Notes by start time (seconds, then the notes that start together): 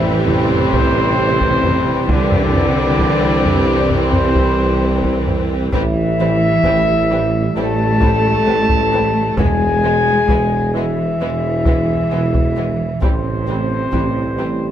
Already playing: A1 E3 G3 C4 E4 E5
0.27 C3 C4 C5, taiko low
0.51 taiko low
0.73 taiko
1.41 taiko
1.64 taiko low
2.08 C2 D3 E3 G3 C4 D4 D5, taiko
2.32 taiko low
2.54 taiko low
3.00 taiko
3.46 taiko low
3.90 C3 C4 C5, taiko low
4.13 taiko low
4.36 taiko
5.04 taiko
5.28 taiko low
5.73 A1 E3 G3 C4 E4 E5, taiko
6.20 E3 G3 C4
6.64 A1 E3 G3 C4, taiko
7.11 E3 G3 C4
7.55 A1 E3 G3 A3 C4 A4 A5
8.00 E3 G3 C4, taiko
8.46 A1 E3 G3 C4
8.69 taiko
8.92 E3 G3 C4
9.37 E1 E2 E3 G#3 B3 G#4 G#5, taiko
9.84 E3 G#3 B3
10.28 E1 E3 G#3 B3, taiko
10.74 E3 G#3 B3 E4 E5
11.19 E1 E3 G#3 B3
11.65 E3 G#3 B3, taiko
12.11 E1 E3 G#3 B3
12.34 taiko
12.56 E3 G#3 B3
13.00 A1 C3 E3 G3 C4 C5, taiko
13.47 E3 G3 C4
13.92 A1 E3 G3 C4, taiko
14.38 E3 G3 C4